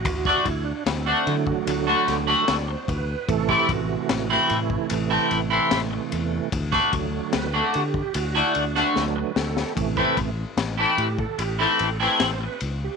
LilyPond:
<<
  \new Staff \with { instrumentName = "Tonewheel organ" } { \time 4/4 \key a \dorian \tempo 4 = 74 fis'8 e'16 d'16 c'8 e'16 fis'8 r8. d''16 c''16 b'8 | a'16 g'16 fis'8. fis'16 e'8 r2 | r4 b'16 a'16 g'8 fis'16 e'16 d'8. b'16 a'8 | r4. g'16 a'16 g'16 a'8 b'16 c''16 b'8 g'16 | }
  \new Staff \with { instrumentName = "Tonewheel organ" } { \clef bass \time 4/4 \key a \dorian r4. <d fis a>4. r4 | <c e a>1 | r8 <d fis a>8 r2 <d fis a>8 r8 | <c e a>8 r2. r8 | }
  \new Staff \with { instrumentName = "Clean electric guitar" } { \time 4/4 \key a \dorian r16 <d a d' fis'>16 r8. <d a d' fis'>16 r8. <d a d' fis'>16 r16 <d a d' fis'>16 r4 | r16 <e a c' e'>16 r8. <e a c' e'>16 r8. <e a c' e'>16 r16 <e a c' e'>16 r4 | r16 <d a d' fis'>16 r8. <d a d' fis'>16 r8. <d a d' fis'>16 r16 <d a d' fis'>16 r4 | r16 <e a c' e'>16 r8. <e a c' e'>16 r8. <e a c' e'>16 r16 <e a c' e'>16 r4 | }
  \new Staff \with { instrumentName = "Fingered electric bass" } { \clef bass \time 4/4 \key a \dorian d,8 d,8 d,8 d8 d,8 d,8 d,8 d,8 | a,,8 a,,8 a,,8 a,8 a,,8 a,,8 a,,8 e,8 | d,8 d,8 d,8 d8 d,8 d,8 d,8 d,8 | a,,8 a,,8 a,,8 a,8 a,,8 a,,8 a,,8 cis,8 | }
  \new DrumStaff \with { instrumentName = "Drums" } \drummode { \time 4/4 <bd cymr>16 bd16 <bd cymr>8 <cymr sn>8 cymr16 bd16 cymr8 <cymr sn>8 <cymr sn>8 <bd cymr>8 | <bd cymr>16 bd16 <bd cymr>8 <cymr sn>8 cymr16 bd16 cymr8 cymr8 <cymr sn>8 cymr8 | <bd cymr>16 <bd sn>16 <bd cymr>8 <cymr sn>8 cymr16 bd16 cymr8 cymr16 sn16 sn8 sn16 sn16 | <bd cymr>16 bd16 <bd cymr>8 <cymr sn>8 cymr16 bd16 cymr8 cymr8 <cymr sn>8 cymr8 | }
>>